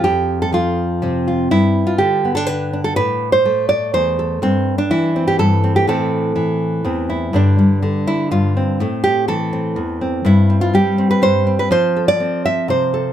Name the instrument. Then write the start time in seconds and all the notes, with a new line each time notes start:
nylon-string guitar
Already playing: C4
0.04 F2 G4
0.42 A4
0.52 F3 F4
1.02 C3 C4
1.28 F4
1.51 G2 E4
1.87 F4
1.98 D3 G4
2.25 B3
2.35 D4 A4
2.46 D3 B4
2.73 D4
2.84 A4
2.96 A2 B4
3.32 C5
3.45 A3
3.69 D5
3.94 E2 C5
4.19 A4
4.42 G2 C4
4.78 D4
4.91 E3 E4
5.16 C4
5.28 G4
5.39 G2 A4
5.64 C4
5.76 G4
5.87 A2 E3 A3 C4 A4
6.36 E3
6.85 E2 C4
7.10 E4
7.33 G2 D3 G3 D4
7.59 G3
7.82 D3
8.07 E4
8.31 G2 F4
8.57 C4
8.80 A2 A3
9.04 G4
9.28 E3 A4
9.53 C4
9.76 E2
10.01 C4
10.25 G2 E4
10.50 C4
10.61 F4
10.74 G3 G4
10.98 C4
11.11 B4
11.22 G2 C5
11.47 C4
11.59 B4
11.71 F3 C5
11.96 A4
12.08 D5
12.20 C4
12.46 E5
12.68 C3 C5
12.94 A4